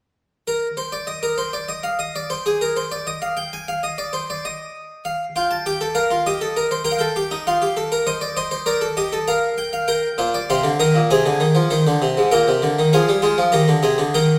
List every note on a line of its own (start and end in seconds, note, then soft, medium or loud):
0.48 0.66 A#4 medium
0.77 0.92 C5 medium
0.92 1.07 D5 medium
1.07 1.22 D#5 medium
1.23 1.38 A#4 medium
1.38 1.53 C5 medium
1.53 1.68 D5 medium
1.69 1.83 D#5 medium
1.83 1.99 F5 medium
1.99 2.14 D#5 medium
2.16 2.30 D5 medium
2.30 2.45 C5 medium
2.46 2.60 G#4 medium
2.61 2.76 A#4 medium
2.76 2.91 C5 medium
2.92 3.06 D5 medium
3.07 3.21 D#5 medium
3.22 3.37 F5 medium
3.37 3.52 G5 medium
3.53 3.67 G#5 medium
3.68 3.83 F5 medium
3.83 3.98 D#5 medium
3.98 4.13 D5 medium
4.13 4.28 C5 medium
4.30 4.44 D5 medium
4.45 5.03 D#5 medium
5.05 5.24 F5 medium
5.36 5.54 F4 medium
5.36 5.50 G5 medium
5.51 5.65 A5 medium
5.66 5.80 G4 medium
5.66 5.85 G5 medium
5.81 5.95 A4 medium
5.95 6.10 A#4 medium
5.95 6.14 F5 medium
6.11 6.25 F4 medium
6.26 6.41 G4 medium
6.26 6.84 D#5 medium
6.41 6.56 A4 medium
6.56 6.71 A#4 medium
6.71 6.86 C5 medium
6.85 7.00 A#4 medium
6.85 6.92 G5 medium
6.92 6.99 F5 medium
6.98 7.15 A4 medium
6.98 7.44 G5 medium
7.16 7.31 G4 medium
7.31 7.46 D#4 medium
7.47 7.62 F4 medium
7.47 8.06 F5 medium
7.62 7.76 G4 medium
7.77 7.92 A4 medium
7.92 8.07 A#4 medium
8.07 8.22 C5 medium
8.07 8.26 D#5 medium
8.21 8.36 D5 medium
8.37 8.50 C5 medium
8.37 8.52 D#5 medium
8.51 8.67 C5 medium
8.66 8.82 A#4 medium
8.66 8.86 D5 medium
8.81 8.97 A4 medium
8.97 9.12 G4 medium
8.97 9.16 D#5 medium
9.13 9.28 A4 medium
9.28 9.87 A#4 medium
9.28 9.47 F5 medium
9.58 9.73 G5 medium
9.73 9.88 F5 medium
9.88 10.07 A#4 medium
9.88 10.47 G5 medium
10.18 10.37 A#2 medium
10.18 10.34 C5 medium
10.34 10.49 D5 medium
10.50 10.64 C3 medium
10.50 10.69 C5 medium
10.50 10.69 F5 medium
10.64 10.79 D3 medium
10.80 10.95 D#3 medium
10.80 10.98 A#4 medium
10.80 10.99 D#5 medium
10.95 11.10 A#2 medium
11.11 11.25 C3 medium
11.11 11.69 G#4 medium
11.11 12.28 G#5 medium
11.26 11.40 D3 medium
11.40 11.55 D#3 medium
11.55 11.70 F3 medium
11.70 11.85 D#3 medium
11.70 12.30 C5 medium
11.87 12.01 D3 medium
12.02 12.16 C3 medium
12.17 12.32 G#2 medium
12.31 12.46 A#2 medium
12.31 12.91 A#4 medium
12.31 12.91 G5 medium
12.48 12.62 C3 medium
12.62 12.77 D3 medium
12.79 12.93 D#3 medium
12.93 13.08 F3 medium
12.93 13.12 G#4 medium
12.93 13.52 F5 medium
13.09 13.23 G3 medium
13.22 13.38 G#3 medium
13.22 13.42 F4 medium
13.38 13.53 F3 medium
13.52 13.68 D#3 medium
13.52 13.72 G4 medium
13.52 14.12 A#5 medium
13.68 13.83 D3 medium
13.83 13.99 C3 medium
13.83 14.02 G#4 medium
13.98 14.14 D3 medium
14.14 14.39 D#3 medium
14.14 14.34 A#4 medium
14.14 14.39 G5 medium